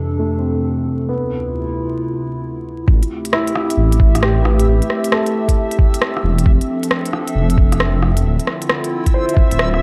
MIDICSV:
0, 0, Header, 1, 6, 480
1, 0, Start_track
1, 0, Key_signature, 0, "minor"
1, 0, Tempo, 447761
1, 1163, Time_signature, 4, 2, 24, 8
1, 10530, End_track
2, 0, Start_track
2, 0, Title_t, "Synth texture"
2, 0, Program_c, 0, 99
2, 3082, Note_on_c, 0, 76, 86
2, 10530, Note_off_c, 0, 76, 0
2, 10530, End_track
3, 0, Start_track
3, 0, Title_t, "Upright piano"
3, 0, Program_c, 1, 0
3, 0, Control_c, 1, 64, 127
3, 0, Note_on_c, 1, 52, 48
3, 204, Note_on_c, 1, 57, 51
3, 413, Note_on_c, 1, 60, 48
3, 1040, Note_off_c, 1, 57, 0
3, 1156, Note_off_c, 1, 60, 0
3, 1164, Note_on_c, 1, 59, 59
3, 1177, Control_c, 1, 64, 0
3, 1181, Note_off_c, 1, 52, 0
3, 1374, Control_c, 1, 64, 127
3, 2001, Note_off_c, 1, 59, 0
3, 3099, Control_c, 1, 64, 0
3, 3304, Control_c, 1, 64, 127
3, 3571, Note_on_c, 1, 64, 80
3, 4404, Note_off_c, 1, 64, 0
3, 4534, Note_on_c, 1, 67, 80
3, 4743, Note_on_c, 1, 71, 58
3, 5366, Note_off_c, 1, 67, 0
3, 5481, Note_off_c, 1, 71, 0
3, 5490, Note_on_c, 1, 69, 73
3, 6323, Note_off_c, 1, 69, 0
3, 6936, Control_c, 1, 64, 0
3, 9054, Control_c, 1, 64, 127
3, 9799, Note_on_c, 1, 72, 81
3, 10010, Note_on_c, 1, 76, 54
3, 10530, Note_off_c, 1, 72, 0
3, 10530, Note_off_c, 1, 76, 0
3, 10530, End_track
4, 0, Start_track
4, 0, Title_t, "Ambient pad"
4, 0, Program_c, 2, 92
4, 0, Note_on_c, 2, 41, 76
4, 0, Note_on_c, 2, 48, 69
4, 0, Note_on_c, 2, 62, 68
4, 0, Note_on_c, 2, 69, 83
4, 1123, Note_off_c, 2, 69, 0
4, 1138, Note_off_c, 2, 48, 0
4, 1140, Note_off_c, 2, 41, 0
4, 1142, Note_off_c, 2, 62, 0
4, 1154, Note_on_c, 2, 65, 85
4, 1155, Note_on_c, 2, 48, 68
4, 1155, Note_on_c, 2, 64, 68
4, 1157, Note_on_c, 2, 38, 75
4, 3059, Note_off_c, 2, 65, 0
4, 3060, Note_off_c, 2, 48, 0
4, 3060, Note_off_c, 2, 64, 0
4, 3061, Note_off_c, 2, 38, 0
4, 3091, Note_on_c, 2, 57, 80
4, 3093, Note_on_c, 2, 60, 73
4, 3095, Note_on_c, 2, 67, 88
4, 6889, Note_off_c, 2, 57, 0
4, 6891, Note_off_c, 2, 67, 0
4, 6919, Note_on_c, 2, 62, 74
4, 6921, Note_on_c, 2, 53, 79
4, 6925, Note_on_c, 2, 69, 89
4, 8822, Note_off_c, 2, 62, 0
4, 8823, Note_off_c, 2, 53, 0
4, 8825, Note_off_c, 2, 69, 0
4, 8844, Note_on_c, 2, 65, 89
4, 8845, Note_on_c, 2, 50, 79
4, 8845, Note_on_c, 2, 64, 75
4, 10530, Note_off_c, 2, 50, 0
4, 10530, Note_off_c, 2, 60, 0
4, 10530, Note_off_c, 2, 64, 0
4, 10530, Note_off_c, 2, 65, 0
4, 10530, End_track
5, 0, Start_track
5, 0, Title_t, "Detuned saw bass"
5, 0, Program_c, 3, 39
5, 3084, Note_on_c, 3, 33, 97
5, 3227, Note_off_c, 3, 33, 0
5, 4044, Note_on_c, 3, 33, 81
5, 4270, Note_off_c, 3, 33, 0
5, 4284, Note_on_c, 3, 33, 95
5, 4993, Note_off_c, 3, 33, 0
5, 5010, Note_on_c, 3, 33, 98
5, 5149, Note_off_c, 3, 33, 0
5, 6683, Note_on_c, 3, 28, 102
5, 6909, Note_off_c, 3, 28, 0
5, 6924, Note_on_c, 3, 29, 96
5, 7066, Note_off_c, 3, 29, 0
5, 7882, Note_on_c, 3, 29, 79
5, 8109, Note_off_c, 3, 29, 0
5, 8121, Note_on_c, 3, 29, 90
5, 8831, Note_off_c, 3, 29, 0
5, 8841, Note_on_c, 3, 26, 97
5, 8985, Note_off_c, 3, 26, 0
5, 10199, Note_on_c, 3, 26, 80
5, 10530, Note_off_c, 3, 26, 0
5, 10530, End_track
6, 0, Start_track
6, 0, Title_t, "Drums"
6, 3084, Note_on_c, 9, 36, 113
6, 3191, Note_off_c, 9, 36, 0
6, 3245, Note_on_c, 9, 42, 31
6, 3352, Note_off_c, 9, 42, 0
6, 3484, Note_on_c, 9, 42, 56
6, 3569, Note_on_c, 9, 37, 100
6, 3592, Note_off_c, 9, 42, 0
6, 3676, Note_off_c, 9, 37, 0
6, 3725, Note_on_c, 9, 42, 46
6, 3810, Note_on_c, 9, 37, 66
6, 3832, Note_off_c, 9, 42, 0
6, 3918, Note_off_c, 9, 37, 0
6, 3968, Note_on_c, 9, 42, 57
6, 4075, Note_off_c, 9, 42, 0
6, 4206, Note_on_c, 9, 42, 47
6, 4285, Note_on_c, 9, 36, 106
6, 4313, Note_off_c, 9, 42, 0
6, 4392, Note_off_c, 9, 36, 0
6, 4449, Note_on_c, 9, 37, 56
6, 4449, Note_on_c, 9, 42, 58
6, 4530, Note_off_c, 9, 37, 0
6, 4530, Note_on_c, 9, 37, 105
6, 4556, Note_off_c, 9, 42, 0
6, 4637, Note_off_c, 9, 37, 0
6, 4772, Note_on_c, 9, 37, 66
6, 4880, Note_off_c, 9, 37, 0
6, 4926, Note_on_c, 9, 42, 58
6, 5033, Note_off_c, 9, 42, 0
6, 5168, Note_on_c, 9, 42, 33
6, 5253, Note_on_c, 9, 37, 62
6, 5276, Note_off_c, 9, 42, 0
6, 5360, Note_off_c, 9, 37, 0
6, 5406, Note_on_c, 9, 42, 58
6, 5491, Note_on_c, 9, 37, 105
6, 5514, Note_off_c, 9, 42, 0
6, 5598, Note_off_c, 9, 37, 0
6, 5644, Note_on_c, 9, 42, 46
6, 5751, Note_off_c, 9, 42, 0
6, 5879, Note_on_c, 9, 36, 66
6, 5883, Note_on_c, 9, 42, 59
6, 5986, Note_off_c, 9, 36, 0
6, 5990, Note_off_c, 9, 42, 0
6, 6124, Note_on_c, 9, 42, 47
6, 6203, Note_on_c, 9, 36, 108
6, 6232, Note_off_c, 9, 42, 0
6, 6310, Note_off_c, 9, 36, 0
6, 6367, Note_on_c, 9, 42, 60
6, 6448, Note_on_c, 9, 37, 109
6, 6475, Note_off_c, 9, 42, 0
6, 6555, Note_off_c, 9, 37, 0
6, 6610, Note_on_c, 9, 37, 54
6, 6717, Note_off_c, 9, 37, 0
6, 6845, Note_on_c, 9, 42, 59
6, 6923, Note_on_c, 9, 36, 122
6, 6952, Note_off_c, 9, 42, 0
6, 7031, Note_off_c, 9, 36, 0
6, 7089, Note_on_c, 9, 42, 32
6, 7196, Note_off_c, 9, 42, 0
6, 7325, Note_on_c, 9, 42, 59
6, 7406, Note_on_c, 9, 37, 107
6, 7432, Note_off_c, 9, 42, 0
6, 7513, Note_off_c, 9, 37, 0
6, 7563, Note_on_c, 9, 42, 45
6, 7646, Note_on_c, 9, 37, 61
6, 7671, Note_off_c, 9, 42, 0
6, 7753, Note_off_c, 9, 37, 0
6, 7799, Note_on_c, 9, 42, 55
6, 7906, Note_off_c, 9, 42, 0
6, 8038, Note_on_c, 9, 42, 45
6, 8121, Note_on_c, 9, 36, 113
6, 8145, Note_off_c, 9, 42, 0
6, 8228, Note_off_c, 9, 36, 0
6, 8278, Note_on_c, 9, 37, 50
6, 8278, Note_on_c, 9, 42, 55
6, 8362, Note_off_c, 9, 37, 0
6, 8362, Note_on_c, 9, 37, 111
6, 8385, Note_off_c, 9, 42, 0
6, 8470, Note_off_c, 9, 37, 0
6, 8602, Note_on_c, 9, 37, 61
6, 8709, Note_off_c, 9, 37, 0
6, 8756, Note_on_c, 9, 42, 56
6, 8863, Note_off_c, 9, 42, 0
6, 9000, Note_on_c, 9, 42, 30
6, 9083, Note_on_c, 9, 37, 65
6, 9107, Note_off_c, 9, 42, 0
6, 9191, Note_off_c, 9, 37, 0
6, 9238, Note_on_c, 9, 42, 53
6, 9321, Note_on_c, 9, 37, 105
6, 9345, Note_off_c, 9, 42, 0
6, 9428, Note_off_c, 9, 37, 0
6, 9478, Note_on_c, 9, 42, 44
6, 9586, Note_off_c, 9, 42, 0
6, 9716, Note_on_c, 9, 36, 64
6, 9717, Note_on_c, 9, 42, 54
6, 9823, Note_off_c, 9, 36, 0
6, 9824, Note_off_c, 9, 42, 0
6, 9958, Note_on_c, 9, 42, 42
6, 10040, Note_on_c, 9, 36, 104
6, 10065, Note_off_c, 9, 42, 0
6, 10148, Note_off_c, 9, 36, 0
6, 10198, Note_on_c, 9, 42, 54
6, 10282, Note_on_c, 9, 37, 112
6, 10305, Note_off_c, 9, 42, 0
6, 10389, Note_off_c, 9, 37, 0
6, 10438, Note_on_c, 9, 37, 50
6, 10530, Note_off_c, 9, 37, 0
6, 10530, End_track
0, 0, End_of_file